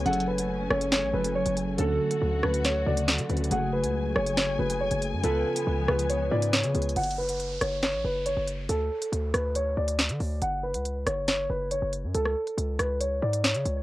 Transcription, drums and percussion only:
0.06 closed hi-hat medium
0.13 closed hi-hat medium
0.20 closed hi-hat medium
0.38 closed hi-hat medium
0.71 cross-stick loud
0.81 closed hi-hat medium
0.92 snare loud
1.24 closed hi-hat medium
1.46 closed hi-hat medium
1.57 closed hi-hat medium
1.78 closed hi-hat medium
2.11 closed hi-hat medium
2.43 cross-stick loud
2.54 closed hi-hat medium
2.65 snare medium
2.65 closed hi-hat medium
2.97 closed hi-hat loud
3.08 snare loud
3.18 closed hi-hat medium
3.29 closed hi-hat soft
3.29 open hi-hat soft
3.37 closed hi-hat medium
3.44 closed hi-hat medium
3.51 closed hi-hat medium
3.84 closed hi-hat medium
4.16 cross-stick medium
4.27 closed hi-hat medium
4.37 snare loud
4.70 closed hi-hat loud
4.91 closed hi-hat medium
5.02 closed hi-hat medium
5.24 closed hi-hat medium
5.56 closed hi-hat medium
5.89 cross-stick medium
5.99 closed hi-hat medium
6.10 closed hi-hat medium
6.42 closed hi-hat medium
6.53 snare loud
6.64 closed hi-hat medium
6.75 closed hi-hat medium
6.75 open hi-hat soft
6.82 closed hi-hat medium
6.89 closed hi-hat medium
6.96 closed hi-hat medium
7.04 closed hi-hat medium
7.11 closed hi-hat medium
7.29 closed hi-hat medium
7.40 closed hi-hat medium
7.61 cross-stick medium
7.61 closed hi-hat medium
7.83 snare loud
7.83 closed hi-hat medium
8.26 closed hi-hat medium
8.47 closed hi-hat medium
8.69 closed hi-hat medium
9.02 closed hi-hat medium
9.13 closed hi-hat medium
9.34 cross-stick medium
9.34 closed hi-hat medium
9.55 closed hi-hat medium
9.88 closed hi-hat medium
9.99 snare loud
10.09 closed hi-hat medium
10.20 open hi-hat soft
10.42 closed hi-hat medium
10.74 closed hi-hat medium
10.85 closed hi-hat medium
11.07 cross-stick medium
11.07 closed hi-hat medium
11.28 snare loud
11.28 closed hi-hat medium
11.71 closed hi-hat medium
11.93 closed hi-hat medium
12.14 closed hi-hat medium
12.25 cross-stick medium
12.47 closed hi-hat medium
12.58 closed hi-hat medium
12.79 cross-stick medium
12.79 closed hi-hat medium
13.01 closed hi-hat medium
13.33 closed hi-hat medium
13.44 snare loud
13.54 closed hi-hat medium
13.65 closed hi-hat medium

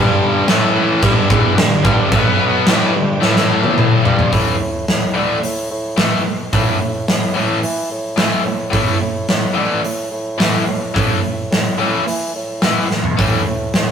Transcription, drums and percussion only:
0.48 snare loud
0.48 crash medium
1.02 kick loud
1.02 crash medium
1.30 kick loud
1.58 snare loud
1.58 crash medium
1.85 kick loud
2.12 kick loud
2.12 crash medium
2.67 snare loud
2.67 crash medium
3.22 snare medium
3.36 snare medium
3.63 high tom medium
3.78 mid tom medium
4.05 floor tom loud
4.19 floor tom loud
4.33 kick loud
4.33 open hi-hat soft
4.88 snare medium
4.88 open hi-hat soft
5.43 open hi-hat medium
5.98 snare loud
5.98 open hi-hat medium
6.53 kick loud
6.53 open hi-hat medium
7.08 snare loud
7.08 open hi-hat soft
7.63 open hi-hat medium
8.18 snare loud
8.18 open hi-hat medium
8.73 kick medium
8.73 open hi-hat soft
9.29 snare loud
9.29 open hi-hat medium
9.84 open hi-hat soft
10.40 snare loud
10.40 open hi-hat medium
10.96 kick loud
10.96 open hi-hat medium
11.53 snare loud
11.53 open hi-hat soft
12.08 open hi-hat medium
12.62 snare loud
12.62 open hi-hat medium
12.91 snare medium
13.04 floor tom medium
13.19 kick loud
13.19 open hi-hat medium
13.74 snare medium
13.74 open hi-hat soft

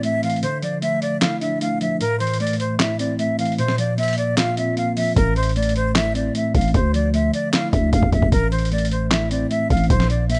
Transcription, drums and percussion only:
0.03 closed hi-hat medium
0.23 closed hi-hat medium
0.30 closed hi-hat medium
0.36 closed hi-hat soft
0.43 closed hi-hat medium
0.62 closed hi-hat medium
0.82 closed hi-hat medium
1.02 closed hi-hat medium
1.22 snare loud
1.22 clap medium
1.22 closed hi-hat medium
1.41 closed hi-hat medium
1.61 closed hi-hat medium
1.81 closed hi-hat medium
2.01 closed hi-hat medium
2.20 closed hi-hat medium
2.27 closed hi-hat medium
2.34 closed hi-hat medium
2.40 closed hi-hat medium
2.47 closed hi-hat medium
2.53 closed hi-hat medium
2.60 closed hi-hat medium
2.80 snare loud
2.80 clap medium
2.80 closed hi-hat medium
2.99 closed hi-hat medium
3.19 closed hi-hat medium
3.39 closed hi-hat medium
3.45 closed hi-hat medium
3.52 closed hi-hat soft
3.58 closed hi-hat medium
3.68 snare medium
3.78 closed hi-hat medium
3.98 closed hi-hat medium
4.03 closed hi-hat medium
4.08 closed hi-hat medium
4.13 closed hi-hat medium
4.18 closed hi-hat medium
4.37 snare loud
4.37 clap medium
4.37 closed hi-hat medium
4.57 closed hi-hat medium
4.77 closed hi-hat medium
4.97 open hi-hat medium
5.16 kick loud
5.16 closed hi-hat medium
5.36 closed hi-hat medium
5.43 closed hi-hat medium
5.49 closed hi-hat medium
5.56 closed hi-hat medium
5.63 closed hi-hat medium
5.69 closed hi-hat medium
5.76 closed hi-hat medium
5.95 snare loud
5.95 clap medium
5.95 closed hi-hat medium
6.15 closed hi-hat medium
6.35 closed hi-hat medium
6.55 kick medium
6.55 closed hi-hat medium
6.61 closed hi-hat medium
6.68 closed hi-hat soft
6.74 kick loud
6.74 closed hi-hat medium
6.94 closed hi-hat medium
7.14 closed hi-hat medium
7.34 closed hi-hat medium
7.53 snare loud
7.53 clap medium
7.53 closed hi-hat medium
7.73 kick loud
7.73 closed hi-hat medium
7.93 kick loud
7.93 closed hi-hat medium
8.03 kick loud
8.12 kick medium
8.12 closed hi-hat medium
8.22 kick loud
8.32 kick loud
8.32 closed hi-hat medium
8.52 closed hi-hat medium
8.59 closed hi-hat medium
8.65 closed hi-hat medium
8.72 closed hi-hat medium
8.78 closed hi-hat medium
8.85 closed hi-hat medium
8.91 closed hi-hat medium
9.11 snare loud
9.11 clap medium
9.11 closed hi-hat medium
9.31 closed hi-hat medium
9.51 closed hi-hat medium
9.70 kick medium
9.70 closed hi-hat medium
9.77 closed hi-hat medium
9.84 closed hi-hat soft
9.90 kick loud
9.90 closed hi-hat medium
10.00 snare medium
10.10 closed hi-hat medium
10.30 closed hi-hat medium
10.35 closed hi-hat medium

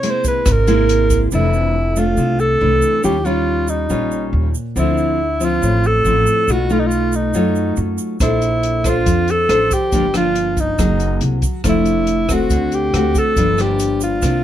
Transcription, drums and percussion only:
0.03 closed hi-hat soft
0.24 kick medium
0.24 closed hi-hat soft
0.24 shaker medium
0.46 kick medium
0.46 cross-stick medium
0.46 closed hi-hat soft
0.46 shaker medium
0.67 closed hi-hat soft
0.67 shaker soft
0.89 closed hi-hat soft
1.10 kick medium
1.10 closed hi-hat soft
1.10 shaker medium
1.31 shaker medium
1.53 shaker soft
1.96 shaker medium
2.17 shaker medium
2.39 shaker soft
2.82 shaker medium
3.03 shaker medium
3.25 shaker soft
3.68 shaker medium
3.90 shaker medium
4.11 shaker soft
4.54 shaker medium
4.76 shaker medium
4.98 shaker soft
5.41 shaker medium
5.63 shaker medium
5.84 shaker soft
6.05 shaker soft
6.27 shaker medium
6.48 shaker medium
6.70 shaker soft
6.91 shaker soft
7.12 shaker medium
7.34 shaker medium
7.55 shaker soft
7.76 shaker soft
7.98 shaker medium
8.20 kick medium
8.20 cross-stick medium
8.20 closed hi-hat soft
8.20 shaker medium
8.42 closed hi-hat soft
8.42 shaker soft
8.63 closed hi-hat soft
8.84 kick medium
8.84 cross-stick medium
8.84 closed hi-hat soft
8.84 shaker medium
9.06 kick medium
9.06 closed hi-hat soft
9.06 shaker medium
9.28 closed hi-hat soft
9.28 shaker soft
9.49 cross-stick medium
9.49 closed hi-hat soft
9.71 kick medium
9.71 closed hi-hat soft
9.71 shaker medium
9.92 kick medium
9.92 closed hi-hat soft
9.92 shaker medium
10.14 cross-stick medium
10.14 closed hi-hat soft
10.14 shaker soft
10.35 closed hi-hat soft
10.57 kick medium
10.57 closed hi-hat soft
10.57 shaker medium
10.78 kick medium
10.78 cross-stick medium
10.78 closed hi-hat soft
10.78 shaker medium
11.00 closed hi-hat soft
11.00 shaker soft
11.21 closed hi-hat soft
11.42 kick medium
11.42 closed hi-hat soft
11.42 shaker medium
11.64 kick medium
11.64 cross-stick medium
11.64 closed hi-hat soft
11.64 shaker medium
11.85 closed hi-hat soft
11.85 shaker soft
12.07 closed hi-hat soft
12.29 kick medium
12.29 cross-stick medium
12.29 closed hi-hat soft
12.29 shaker medium
12.50 kick medium
12.50 closed hi-hat soft
12.50 shaker medium
12.72 closed hi-hat soft
12.72 shaker soft
12.94 cross-stick medium
12.94 closed hi-hat soft
13.15 kick medium
13.15 closed hi-hat soft
13.15 shaker medium
13.36 kick medium
13.36 closed hi-hat soft
13.36 shaker medium
13.58 cross-stick medium
13.58 closed hi-hat soft
13.58 shaker soft
13.79 closed hi-hat soft
13.79 shaker medium
14.01 closed hi-hat soft
14.01 shaker medium
14.22 kick medium
14.22 cross-stick medium
14.22 closed hi-hat soft
14.22 shaker medium

